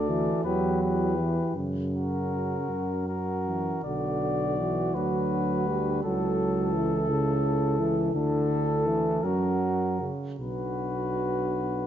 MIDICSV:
0, 0, Header, 1, 6, 480
1, 0, Start_track
1, 0, Key_signature, 2, "minor"
1, 0, Tempo, 732601
1, 1014, Time_signature, 6, 3, 24, 8
1, 1015, Tempo, 766284
1, 2455, Tempo, 734394
1, 3415, Tempo, 711744
1, 5815, Tempo, 744417
1, 6295, Tempo, 789474
1, 7661, End_track
2, 0, Start_track
2, 0, Title_t, "Cornet"
2, 0, Program_c, 0, 56
2, 0, Note_on_c, 0, 74, 34
2, 283, Note_off_c, 0, 74, 0
2, 291, Note_on_c, 0, 71, 36
2, 523, Note_off_c, 0, 71, 0
2, 540, Note_on_c, 0, 71, 34
2, 1011, Note_off_c, 0, 71, 0
2, 1262, Note_on_c, 0, 70, 32
2, 1965, Note_off_c, 0, 70, 0
2, 1976, Note_on_c, 0, 70, 26
2, 2446, Note_off_c, 0, 70, 0
2, 2452, Note_on_c, 0, 74, 40
2, 3173, Note_on_c, 0, 71, 35
2, 3182, Note_off_c, 0, 74, 0
2, 3894, Note_off_c, 0, 71, 0
2, 3898, Note_on_c, 0, 69, 41
2, 5216, Note_off_c, 0, 69, 0
2, 5331, Note_on_c, 0, 69, 43
2, 6045, Note_on_c, 0, 70, 39
2, 6054, Note_off_c, 0, 69, 0
2, 6580, Note_off_c, 0, 70, 0
2, 6767, Note_on_c, 0, 71, 36
2, 7661, Note_off_c, 0, 71, 0
2, 7661, End_track
3, 0, Start_track
3, 0, Title_t, "Flugelhorn"
3, 0, Program_c, 1, 56
3, 0, Note_on_c, 1, 69, 37
3, 282, Note_off_c, 1, 69, 0
3, 301, Note_on_c, 1, 67, 38
3, 527, Note_off_c, 1, 67, 0
3, 533, Note_on_c, 1, 67, 35
3, 1008, Note_off_c, 1, 67, 0
3, 1256, Note_on_c, 1, 66, 33
3, 1962, Note_off_c, 1, 66, 0
3, 1979, Note_on_c, 1, 66, 27
3, 2448, Note_off_c, 1, 66, 0
3, 2450, Note_on_c, 1, 66, 38
3, 3872, Note_off_c, 1, 66, 0
3, 3901, Note_on_c, 1, 69, 42
3, 5301, Note_off_c, 1, 69, 0
3, 5327, Note_on_c, 1, 69, 40
3, 6061, Note_on_c, 1, 66, 39
3, 6070, Note_off_c, 1, 69, 0
3, 6587, Note_off_c, 1, 66, 0
3, 6775, Note_on_c, 1, 66, 32
3, 7661, Note_off_c, 1, 66, 0
3, 7661, End_track
4, 0, Start_track
4, 0, Title_t, "Euphonium"
4, 0, Program_c, 2, 58
4, 0, Note_on_c, 2, 66, 41
4, 279, Note_off_c, 2, 66, 0
4, 295, Note_on_c, 2, 64, 37
4, 524, Note_off_c, 2, 64, 0
4, 540, Note_on_c, 2, 64, 40
4, 1011, Note_off_c, 2, 64, 0
4, 1253, Note_on_c, 2, 61, 30
4, 1960, Note_off_c, 2, 61, 0
4, 1971, Note_on_c, 2, 61, 28
4, 2444, Note_off_c, 2, 61, 0
4, 2450, Note_on_c, 2, 66, 32
4, 3178, Note_on_c, 2, 62, 34
4, 3188, Note_off_c, 2, 66, 0
4, 3903, Note_off_c, 2, 62, 0
4, 3906, Note_on_c, 2, 64, 40
4, 6055, Note_on_c, 2, 61, 43
4, 6065, Note_off_c, 2, 64, 0
4, 6585, Note_off_c, 2, 61, 0
4, 6771, Note_on_c, 2, 62, 34
4, 7661, Note_off_c, 2, 62, 0
4, 7661, End_track
5, 0, Start_track
5, 0, Title_t, "Trombone"
5, 0, Program_c, 3, 57
5, 0, Note_on_c, 3, 50, 51
5, 59, Note_on_c, 3, 52, 61
5, 69, Note_off_c, 3, 50, 0
5, 296, Note_on_c, 3, 54, 57
5, 306, Note_off_c, 3, 52, 0
5, 776, Note_on_c, 3, 52, 50
5, 786, Note_off_c, 3, 54, 0
5, 1019, Note_off_c, 3, 52, 0
5, 1026, Note_on_c, 3, 49, 39
5, 1724, Note_off_c, 3, 49, 0
5, 2220, Note_on_c, 3, 52, 34
5, 2457, Note_on_c, 3, 50, 39
5, 2467, Note_off_c, 3, 52, 0
5, 2938, Note_on_c, 3, 52, 46
5, 2947, Note_off_c, 3, 50, 0
5, 3179, Note_on_c, 3, 54, 50
5, 3189, Note_off_c, 3, 52, 0
5, 3657, Note_on_c, 3, 55, 52
5, 3667, Note_off_c, 3, 54, 0
5, 3902, Note_on_c, 3, 54, 51
5, 3912, Note_off_c, 3, 55, 0
5, 4376, Note_on_c, 3, 52, 53
5, 4386, Note_off_c, 3, 54, 0
5, 4613, Note_on_c, 3, 49, 50
5, 4623, Note_off_c, 3, 52, 0
5, 5085, Note_on_c, 3, 52, 50
5, 5095, Note_off_c, 3, 49, 0
5, 5316, Note_off_c, 3, 52, 0
5, 5321, Note_on_c, 3, 50, 57
5, 5809, Note_on_c, 3, 52, 53
5, 5819, Note_off_c, 3, 50, 0
5, 6044, Note_on_c, 3, 54, 54
5, 6054, Note_off_c, 3, 52, 0
5, 6524, Note_on_c, 3, 49, 44
5, 6533, Note_off_c, 3, 54, 0
5, 6758, Note_off_c, 3, 49, 0
5, 6761, Note_on_c, 3, 47, 36
5, 7474, Note_off_c, 3, 47, 0
5, 7661, End_track
6, 0, Start_track
6, 0, Title_t, "Tuba"
6, 0, Program_c, 4, 58
6, 0, Note_on_c, 4, 38, 47
6, 206, Note_off_c, 4, 38, 0
6, 286, Note_on_c, 4, 40, 46
6, 924, Note_off_c, 4, 40, 0
6, 1010, Note_on_c, 4, 42, 41
6, 1645, Note_off_c, 4, 42, 0
6, 1727, Note_on_c, 4, 42, 35
6, 2369, Note_off_c, 4, 42, 0
6, 2451, Note_on_c, 4, 35, 33
6, 3168, Note_on_c, 4, 38, 35
6, 3177, Note_off_c, 4, 35, 0
6, 3897, Note_off_c, 4, 38, 0
6, 3900, Note_on_c, 4, 37, 42
6, 5300, Note_off_c, 4, 37, 0
6, 5321, Note_on_c, 4, 38, 41
6, 6036, Note_off_c, 4, 38, 0
6, 6046, Note_on_c, 4, 42, 43
6, 6570, Note_off_c, 4, 42, 0
6, 6767, Note_on_c, 4, 35, 33
6, 7661, Note_off_c, 4, 35, 0
6, 7661, End_track
0, 0, End_of_file